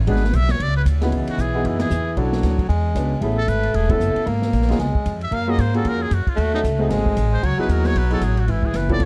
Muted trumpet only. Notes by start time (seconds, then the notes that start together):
0.09 B4
0.35 E5
0.51 C#5
0.62 D5
0.76 B4
1.30 F#4
1.41 G#4
1.66 E4
1.80 G#4
3.38 A4
3.48 B4
3.75 G#4
3.91 A4
5.23 E5
5.34 F5
5.50 D#5
5.60 C5
5.77 A4
5.88 A#4
6.02 G#4
6.14 F#4
6.29 F4
6.40 F#4
6.54 D#4
7.33 C5
7.45 C#5
7.61 B4
7.71 A#4
7.86 C#5
7.98 B4
8.13 A4
8.24 G#4
8.39 F#4
8.51 E4
8.66 G#4
8.76 B4
8.92 D5